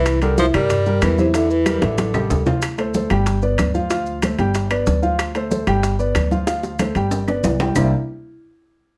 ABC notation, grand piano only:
X:1
M:4/4
L:1/8
Q:1/4=187
K:C
V:1 name="Grand piano"
[E,Ee] [G,G_B] [E,Ee] [G,GB]2 [G,GB]2 [E,Ee] | [E,Ee]2 [G,G_B] [E,Ee]2 [G,GA]2 [F,Ff] | z [A,Ac] [A,Ac] [G,Gg]2 [B,Bd]2 [F,Ff] | [F,Ff]2 [A,Ac] [G,Gg]2 [B,Bd]2 [F,Ff]- |
[F,Ff] [A,Ac] [A,Ac] [G,Gg]2 [B,Bd]2 [F,Ff] | [F,Ff]2 [A,Ac] [G,Gg]2 [B,Bd]2 [G,Gg] | [C,G,_B,CDE] z6 z |]